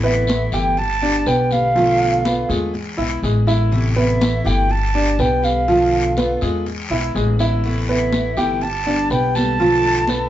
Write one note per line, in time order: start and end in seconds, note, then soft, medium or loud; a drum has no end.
0.00 0.46 A1 loud
0.00 0.27 C3 medium
0.00 0.27 E3 medium
0.00 0.27 A3 medium
0.00 0.28 B3 medium
0.00 0.44 B3 medium
0.00 0.28 E4 medium
0.00 0.44 B4 medium
0.05 0.55 E5 loud
0.05 high conga soft
0.27 0.52 E3 medium
0.27 0.52 A3 medium
0.27 0.52 B3 medium
0.27 0.51 E4 medium
0.27 high conga medium
0.27 short guiro medium
0.52 1.22 G1 medium
0.52 0.77 E3 medium
0.52 0.77 A3 medium
0.52 0.77 B3 medium
0.52 0.76 E4 medium
0.52 0.94 G4 medium
0.52 0.80 G5 medium
0.52 0.94 G5 medium
0.52 short guiro medium
0.77 1.29 A5 loud
0.77 muted steel-string acoustic guitar stroke medium
0.77 high conga soft
0.77 long guiro medium
1.02 1.51 G3 soft
1.02 1.51 B3 soft
1.02 1.22 D4 medium
1.02 1.50 G4 soft
1.02 1.23 D5 medium
1.02 high conga soft
1.26 2.43 B1 medium
1.26 1.67 B3 medium
1.26 1.67 B4 medium
1.26 1.53 G5 medium
1.26 high conga soft
1.26 short guiro medium
1.51 1.76 D3 medium
1.51 1.75 G3 medium
1.51 1.75 B3 medium
1.51 1.75 G4 medium
1.51 2.50 F5 medium
1.51 high conga medium
1.51 short guiro medium
1.75 2.24 B2 medium
1.75 2.24 D3 medium
1.75 2.16 F3 medium
1.75 2.24 A3 medium
1.75 2.25 B3 medium
1.75 2.16 F4 medium
1.75 2.25 F4 medium
1.75 high conga soft
1.75 long guiro medium
2.01 high conga soft
2.25 2.48 D3 medium
2.25 2.49 A3 soft
2.25 2.45 B3 medium
2.25 2.49 B3 medium
2.25 2.49 F4 medium
2.25 2.45 B4 medium
2.25 high conga medium
2.25 short guiro medium
2.49 2.95 E2 medium
2.49 2.72 D3 medium
2.49 2.89 G#3 medium
2.49 2.74 A3 medium
2.49 2.73 B3 medium
2.49 2.73 F4 medium
2.49 2.89 G#4 medium
2.49 high conga soft
2.49 short guiro medium
2.74 muted steel-string acoustic guitar stroke medium
2.74 high conga soft
2.74 long guiro medium
2.97 3.21 B1 medium
2.97 3.47 G#3 soft
2.97 3.46 B3 soft
2.97 3.18 E4 medium
2.97 3.45 E4 soft
2.97 3.18 E5 medium
2.97 high conga soft
3.22 4.39 A1 medium
3.22 3.43 G#3 medium
3.22 3.43 G#4 medium
3.22 high conga soft
3.22 short guiro medium
3.47 3.71 D3 soft
3.47 3.71 G#3 medium
3.47 3.71 B3 medium
3.47 3.71 E4 medium
3.47 3.88 E4 medium
3.47 3.88 E5 medium
3.47 high conga soft
3.47 short guiro medium
3.71 4.20 C3 medium
3.71 4.18 E3 medium
3.71 4.19 A3 medium
3.71 4.20 B3 medium
3.71 4.20 E4 medium
3.71 high conga soft
3.71 long guiro medium
3.96 4.37 B3 medium
3.96 4.37 B4 medium
3.96 4.48 E5 medium
3.96 high conga soft
4.19 4.44 E3 soft
4.19 4.44 A3 medium
4.19 4.44 B3 medium
4.19 4.43 E4 medium
4.19 high conga loud
4.19 short guiro medium
4.44 5.15 G1 medium
4.44 4.69 E3 medium
4.44 4.69 A3 medium
4.44 4.68 B3 medium
4.44 4.68 E4 medium
4.44 4.86 G4 medium
4.44 4.86 G5 medium
4.44 4.73 G5 loud
4.44 short guiro medium
4.69 5.21 A5 loud
4.69 muted steel-string acoustic guitar stroke medium
4.69 high conga soft
4.69 long guiro medium
4.94 5.43 G3 soft
4.94 5.42 B3 soft
4.94 5.15 D4 medium
4.94 5.41 G4 medium
4.94 5.15 D5 medium
4.94 high conga soft
5.19 6.35 B1 medium
5.19 5.59 B3 medium
5.19 5.60 B4 medium
5.19 5.45 G5 loud
5.19 high conga soft
5.19 short guiro medium
5.42 5.67 D3 medium
5.42 5.67 G3 medium
5.42 5.67 B3 medium
5.42 5.67 G4 medium
5.42 6.42 F5 medium
5.42 short guiro medium
5.68 6.16 B2 medium
5.68 6.16 D3 medium
5.68 6.08 F3 medium
5.68 6.16 A3 medium
5.68 6.17 B3 medium
5.68 6.09 F4 medium
5.68 6.17 F4 medium
5.68 high conga soft
5.68 long guiro medium
5.93 high conga soft
6.17 6.40 D3 medium
6.17 6.41 A3 medium
6.17 6.37 B3 medium
6.17 6.41 B3 medium
6.17 6.41 F4 medium
6.17 6.38 B4 medium
6.17 high conga medium
6.17 short guiro medium
6.41 6.87 E2 medium
6.41 6.66 D3 medium
6.41 6.82 G#3 medium
6.41 6.66 A3 medium
6.41 6.66 B3 medium
6.41 6.65 F4 medium
6.41 6.82 G#4 medium
6.41 high conga soft
6.41 short guiro medium
6.66 muted steel-string acoustic guitar stroke medium
6.66 high conga soft
6.66 long guiro medium
6.90 7.13 B1 medium
6.90 7.39 G#3 soft
6.90 7.39 B3 soft
6.90 7.38 E4 medium
6.90 7.11 E4 medium
6.90 7.11 E5 medium
6.90 high conga soft
7.15 8.31 A1 medium
7.15 7.35 G#3 medium
7.15 7.35 G#4 medium
7.15 high conga soft
7.15 short guiro medium
7.39 7.64 D3 medium
7.39 7.64 G#3 medium
7.39 7.63 B3 medium
7.39 7.63 E4 medium
7.39 7.80 E4 medium
7.39 7.80 E5 medium
7.39 high conga soft
7.39 short guiro medium
7.64 8.12 C3 medium
7.64 8.12 E3 medium
7.64 8.13 A3 medium
7.64 8.13 B3 medium
7.64 8.13 E4 medium
7.64 high conga soft
7.64 long guiro medium
7.89 8.29 B3 medium
7.89 8.29 B4 medium
7.89 8.40 E5 medium
7.89 high conga soft
8.12 8.37 E3 soft
8.12 8.37 A3 medium
8.12 8.38 B3 medium
8.12 8.37 E4 medium
8.12 high conga loud
8.12 short guiro medium
8.37 9.07 G1 medium
8.37 8.62 E3 medium
8.37 8.62 A3 medium
8.37 8.62 B3 medium
8.37 8.61 E4 medium
8.37 8.78 G4 medium
8.37 8.78 G5 medium
8.37 8.64 G5 loud
8.37 short guiro medium
8.61 9.11 A5 loud
8.61 muted steel-string acoustic guitar stroke medium
8.61 high conga soft
8.61 long guiro medium
8.86 9.36 G3 soft
8.86 9.35 B3 medium
8.86 9.07 D4 medium
8.86 9.35 G4 medium
8.86 9.07 D5 medium
8.86 high conga soft
9.10 10.27 B1 medium
9.10 9.51 B3 medium
9.10 9.51 B4 medium
9.10 9.37 G5 loud
9.10 high conga soft
9.10 short guiro medium
9.35 9.59 D3 medium
9.35 9.60 G3 medium
9.35 9.60 B3 medium
9.35 9.59 G4 medium
9.35 10.29 A5 loud
9.35 high conga medium
9.35 short guiro medium
9.59 10.08 B2 medium
9.59 10.07 D3 medium
9.59 10.00 F3 medium
9.59 10.08 A3 medium
9.59 10.09 B3 medium
9.59 10.00 F4 medium
9.59 10.09 F4 medium
9.59 high conga soft
9.59 long guiro medium
9.84 high conga soft
10.07 10.29 D3 medium
10.07 10.29 A3 medium
10.07 10.29 B3 medium
10.07 10.29 F4 medium
10.07 10.29 B4 medium
10.07 high conga medium
10.07 short guiro medium